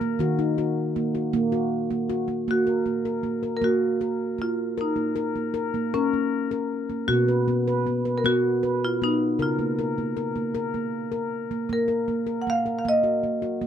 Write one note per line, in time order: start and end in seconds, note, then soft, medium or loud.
0.00 0.15 D#3 medium
0.00 0.20 A#3 medium
0.19 2.44 D#3 medium
0.19 0.39 F#4 medium
0.39 0.57 D#4 medium
0.58 0.96 F#4 medium
0.96 1.15 A#3 medium
1.15 1.34 F#4 medium
1.33 1.53 A#3 medium
1.52 1.91 F#4 medium
1.91 2.10 A#3 medium
2.10 2.29 F#4 medium
2.28 2.47 A#3 medium
2.48 2.67 A#3 medium
2.48 3.60 F#4 medium
2.67 2.86 A#4 medium
2.86 3.05 A#3 medium
3.05 3.25 A#4 medium
3.23 3.43 A#3 medium
3.43 3.62 A#4 medium
3.57 3.63 A#4 medium
3.62 4.00 A#3 medium
3.62 4.42 F#4 medium
4.01 4.39 A#4 medium
4.38 4.77 A#3 medium
4.38 4.80 F4 medium
4.78 5.52 D#4 medium
4.78 4.97 A#4 medium
4.96 5.16 A#3 medium
5.16 5.35 A#4 medium
5.36 5.55 A#3 medium
5.54 5.73 A#4 medium
5.74 5.93 A#3 medium
5.94 6.76 C#4 medium
5.94 6.13 A#4 medium
6.13 6.51 A#3 medium
6.51 6.89 A#4 medium
6.90 7.08 A#3 medium
7.08 9.35 B2 medium
7.08 7.27 B3 medium
7.08 7.81 F#4 medium
7.28 7.47 B4 medium
7.48 7.66 B3 medium
7.68 7.86 B4 medium
7.87 8.05 B3 medium
8.05 8.24 B4 medium
8.18 8.24 A#4 medium
8.24 8.62 B3 medium
8.24 8.84 F#4 loud
8.63 9.01 B4 medium
8.85 9.01 F4 medium
9.02 9.39 B3 medium
9.02 9.38 D#4 medium
9.39 11.65 C#3 medium
9.39 11.29 F4 medium
9.39 9.58 A#4 medium
9.59 9.77 A#3 medium
9.79 9.97 A#4 medium
9.98 10.16 A#3 medium
10.17 10.35 A#4 medium
10.36 10.54 A#3 medium
10.55 10.73 A#4 medium
10.74 11.12 A#3 medium
11.12 11.50 A#4 medium
11.51 11.68 A#3 medium
11.69 11.88 A#3 medium
11.69 12.43 A#4 medium
11.88 12.07 A#4 medium
12.08 12.27 A#3 medium
12.27 12.46 A#4 medium
12.42 12.47 F#5 medium
12.47 12.66 A#3 medium
12.47 12.63 F5 medium
12.66 12.85 A#4 medium
12.79 12.85 F5 medium
12.85 13.04 A#3 medium
12.85 13.67 D#5 medium
13.04 13.23 F#4 medium
13.24 13.42 A#3 medium
13.42 13.61 F#4 medium
13.61 13.67 A#3 medium